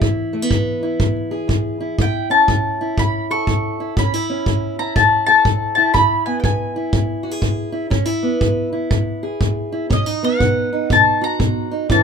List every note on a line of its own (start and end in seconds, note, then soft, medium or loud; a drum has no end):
0.00 0.47 E2 medium
0.00 2.00 E3 medium
0.00 0.82 E4 medium
0.00 kick medium
0.33 0.42 A3 medium
0.42 1.99 B3 soft
0.51 0.97 E2 medium
0.51 kick medium
0.83 1.80 E4 medium
1.00 1.46 E2 medium
1.00 kick medium
1.31 1.97 G#4 medium
1.48 1.94 E2 medium
1.48 kick medium
1.80 1.99 E4 medium
1.99 2.45 A2 medium
1.99 2.80 E4 medium
1.99 2.29 G5 medium
1.99 kick medium
2.30 3.94 C#4 medium
2.30 2.99 A5 medium
2.48 2.94 A2 medium
2.48 kick medium
2.81 3.80 E4 medium
2.97 3.43 A2 medium
2.97 3.31 B5 loud
2.97 kick medium
3.31 3.95 A4 medium
3.31 3.93 C#6 loud
3.47 3.93 A2 medium
3.47 kick medium
3.80 3.98 E4 medium
3.97 4.43 A2 medium
3.97 4.14 C#4 medium
3.97 4.79 B5 loud
3.97 kick medium
4.14 4.78 E4 medium
4.30 5.93 C#4 medium
4.46 4.92 A2 medium
4.46 kick medium
4.79 5.77 E4 medium
4.79 4.95 A#5 medium
4.96 5.42 A2 medium
4.96 5.25 A5 medium
4.96 kick medium
5.26 5.93 A4 medium
5.26 5.74 A5 medium
5.45 5.91 A2 medium
5.45 kick medium
5.75 5.95 E4 medium
5.75 5.93 A5 medium
5.94 6.40 E2 medium
5.94 6.76 E4 medium
5.94 6.23 B5 medium
5.94 kick medium
6.26 7.93 B3 medium
6.26 6.39 G#5 medium
6.40 6.44 G5 medium
6.40 kick medium
6.44 6.89 E2 medium
6.44 7.88 G#5 medium
6.76 7.71 E4 medium
6.92 7.38 E2 medium
6.92 kick medium
7.23 7.31 F#4 medium
7.31 7.91 G#4 medium
7.41 7.88 E2 medium
7.41 kick medium
7.72 7.89 E4 medium
7.90 8.37 E2 medium
7.90 8.05 C#4 medium
7.90 kick medium
8.05 8.71 E4 soft
8.23 9.88 B3 medium
8.41 8.87 E2 medium
8.41 kick medium
8.72 9.71 E4 medium
8.90 9.37 E2 medium
8.90 kick medium
9.23 9.89 G#4 medium
9.40 9.87 E2 medium
9.40 kick medium
9.72 9.88 E4 medium
9.90 10.36 B2 medium
9.90 10.06 C#4 medium
9.90 10.21 D#5 loud
9.90 kick medium
10.06 10.71 D#4 medium
10.23 11.88 B3 medium
10.23 10.92 F#5 medium
10.39 10.86 B2 medium
10.39 kick medium
10.73 11.70 D#4 medium
10.90 11.36 B2 medium
10.90 11.23 A5 loud
10.90 kick medium
11.21 11.90 F#4 medium
11.21 11.91 A#5 loud
11.39 11.86 B2 medium
11.39 kick medium
11.71 11.88 D#4 medium
11.89 12.03 A2 medium
11.89 12.03 E3 medium
11.89 12.03 C#4 medium
11.89 12.03 E4 medium
11.89 12.03 A4 medium
11.89 12.03 A5 loud
11.89 kick medium